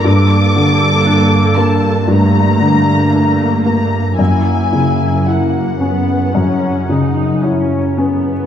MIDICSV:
0, 0, Header, 1, 5, 480
1, 0, Start_track
1, 0, Tempo, 1022147
1, 26, Time_signature, 4, 2, 24, 8
1, 1466, Tempo, 1079137
1, 3842, End_track
2, 0, Start_track
2, 0, Title_t, "Violin section"
2, 0, Program_c, 0, 48
2, 26, Note_on_c, 0, 86, 85
2, 735, Note_on_c, 0, 81, 65
2, 736, Note_off_c, 0, 86, 0
2, 974, Note_off_c, 0, 81, 0
2, 977, Note_on_c, 0, 82, 72
2, 1694, Note_off_c, 0, 82, 0
2, 1699, Note_on_c, 0, 82, 51
2, 1934, Note_off_c, 0, 82, 0
2, 1938, Note_on_c, 0, 80, 55
2, 2412, Note_off_c, 0, 80, 0
2, 2423, Note_on_c, 0, 78, 39
2, 3387, Note_off_c, 0, 78, 0
2, 3842, End_track
3, 0, Start_track
3, 0, Title_t, "Viola section"
3, 0, Program_c, 1, 48
3, 26, Note_on_c, 1, 58, 50
3, 26, Note_on_c, 1, 69, 53
3, 957, Note_off_c, 1, 58, 0
3, 957, Note_off_c, 1, 69, 0
3, 974, Note_on_c, 1, 57, 53
3, 974, Note_on_c, 1, 58, 48
3, 1922, Note_off_c, 1, 58, 0
3, 1923, Note_off_c, 1, 57, 0
3, 1941, Note_on_c, 1, 64, 36
3, 1942, Note_on_c, 1, 58, 33
3, 2413, Note_off_c, 1, 58, 0
3, 2413, Note_off_c, 1, 64, 0
3, 2425, Note_on_c, 1, 58, 38
3, 2648, Note_off_c, 1, 58, 0
3, 2663, Note_on_c, 1, 59, 41
3, 2899, Note_off_c, 1, 59, 0
3, 2904, Note_on_c, 1, 61, 41
3, 3146, Note_off_c, 1, 61, 0
3, 3149, Note_on_c, 1, 63, 37
3, 3388, Note_on_c, 1, 61, 37
3, 3389, Note_off_c, 1, 63, 0
3, 3629, Note_off_c, 1, 61, 0
3, 3630, Note_on_c, 1, 59, 35
3, 3842, Note_off_c, 1, 59, 0
3, 3842, End_track
4, 0, Start_track
4, 0, Title_t, "Felt piano"
4, 0, Program_c, 2, 0
4, 0, Control_c, 2, 64, 127
4, 21, Note_on_c, 2, 43, 45
4, 33, Control_c, 2, 64, 0
4, 114, Control_c, 2, 64, 127
4, 262, Note_on_c, 2, 50, 37
4, 496, Note_on_c, 2, 62, 39
4, 641, Note_off_c, 2, 50, 0
4, 736, Note_on_c, 2, 58, 35
4, 878, Note_off_c, 2, 62, 0
4, 954, Note_off_c, 2, 43, 0
4, 975, Note_on_c, 2, 43, 39
4, 1121, Note_off_c, 2, 58, 0
4, 1219, Note_on_c, 2, 50, 30
4, 1467, Note_on_c, 2, 62, 29
4, 1609, Note_off_c, 2, 50, 0
4, 1703, Note_on_c, 2, 58, 29
4, 1845, Note_off_c, 2, 62, 0
4, 1923, Note_off_c, 2, 43, 0
4, 1940, Note_on_c, 2, 42, 33
4, 1941, Note_off_c, 2, 58, 0
4, 1950, Control_c, 2, 64, 0
4, 2019, Control_c, 2, 64, 127
4, 2180, Note_on_c, 2, 49, 25
4, 2418, Note_on_c, 2, 64, 26
4, 2566, Note_off_c, 2, 49, 0
4, 2659, Note_on_c, 2, 61, 24
4, 2806, Note_off_c, 2, 64, 0
4, 2886, Note_off_c, 2, 42, 0
4, 2900, Note_on_c, 2, 42, 29
4, 3048, Note_off_c, 2, 61, 0
4, 3144, Note_on_c, 2, 49, 23
4, 3385, Note_on_c, 2, 64, 25
4, 3530, Note_off_c, 2, 49, 0
4, 3627, Note_on_c, 2, 61, 25
4, 3772, Note_off_c, 2, 64, 0
4, 3842, Note_off_c, 2, 42, 0
4, 3842, Note_off_c, 2, 61, 0
4, 3842, End_track
5, 0, Start_track
5, 0, Title_t, "Cello section"
5, 0, Program_c, 3, 48
5, 26, Note_on_c, 3, 43, 48
5, 1923, Note_off_c, 3, 43, 0
5, 1941, Note_on_c, 3, 42, 38
5, 3776, Note_off_c, 3, 42, 0
5, 3842, End_track
0, 0, End_of_file